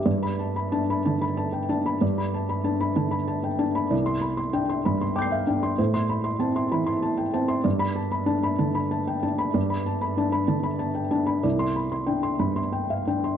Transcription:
<<
  \new Staff \with { instrumentName = "Felt piano" } { \time 6/8 \key g \mixolydian \tempo 4. = 63 << { r16 b''8 r2 r16 | r2. | r16 c'''8 r4 r16 <d''' g''' c''''>4 | r16 c'''8 r2 r16 |
r16 b''8 r2 r16 | r2. | r16 c'''8 r2 r16 | } \\ { d''8 a''16 b''16 a''16 b''16 a''16 b''16 a''16 g''16 a''16 b''16 | d''16 b''16 a''16 b''16 a''16 b''16 a''16 b''16 a''16 g''16 a''16 b''16 | d''8 b''16 c'''16 g''16 c'''16 b''16 c'''16 g''16 f''16 g''16 c'''16 | c''8 b''16 c'''16 a''16 c'''16 b''16 c'''16 a''16 g''16 a''16 c'''16 |
d''8 a''16 b''16 a''16 b''16 a''16 b''16 a''16 g''16 a''16 b''16 | d''16 b''16 a''16 b''16 a''16 b''16 a''16 b''16 a''16 g''16 a''16 b''16 | d''8 b''16 c'''16 g''16 c'''16 b''16 c'''16 g''16 f''16 g''16 c'''16 | } >> }
  \new Staff \with { instrumentName = "Felt piano" } { \clef bass \time 6/8 \key g \mixolydian g,4 d'8 d4 d'8 | g,4 d'8 d4 d'8 | c,4 d'8 g,4 d'8 | a,4 c'8 e4 c'8 |
g,4 d'8 d4 d'8 | g,4 d'8 d4 d'8 | c,4 d'8 g,4 d'8 | }
>>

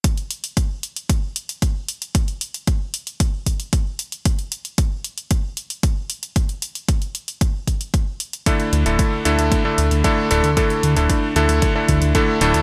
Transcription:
<<
  \new Staff \with { instrumentName = "Electric grand piano" } { \time 4/4 \key d \mixolydian \tempo 4 = 114 r1 | r1 | r1 | r1 |
<d a d' e' a'>8. <d a d' e' a'>8. <d a d' e' a'>8. <d a d' e' a'>8. <d a d' e' a'>8 <d a d' e' a'>16 r16 | <d a d' e' a'>8. <d a d' e' a'>8. <d a d' e' a'>8. <d a d' e' a'>8. <d a d' e' a'>8 <a, a d' e' a'>16 r16 | }
  \new Staff \with { instrumentName = "Analog synth bass" } { \clef bass \time 4/4 \key d \mixolydian r1 | r1 | r1 | r1 |
r8 d,16 d,,16 r8 d,16 d,16 r8 d,16 d,16 r8 d,,16 d,16 | r8 d,16 d,,16 r8 d,16 d,16 r8 d,16 d,16 r8 d,,16 d,16 | }
  \new DrumStaff \with { instrumentName = "Drums" } \drummode { \time 4/4 <hh bd>16 hh16 hh16 hh16 <hh bd>8 hh16 hh16 <hh bd>8 hh16 hh16 <hh bd>8 hh16 hh16 | <hh bd>16 hh16 hh16 hh16 <hh bd>8 hh16 hh16 <hh bd>8 <hh bd>16 hh16 <hh bd>8 hh16 hh16 | <hh bd>16 hh16 hh16 hh16 <hh bd>8 hh16 hh16 <hh bd>8 hh16 hh16 <hh bd>8 hh16 hh16 | <hh bd>16 hh16 hh16 hh16 <hh bd>16 hh16 hh16 hh16 <hh bd>8 <hh bd>16 hh16 <hh bd>8 hh16 hh16 |
<hh bd>16 hh16 hh16 hh16 <hh bd>8 hh16 hh16 <hh bd>8 hh16 hh16 <hh bd>8 hh16 hh16 | <hh bd>16 hh16 hh16 hh16 <hh bd>8 hh16 hh16 <hh bd>8 <hh bd>16 hh16 <hh bd>8 hh16 hh16 | }
>>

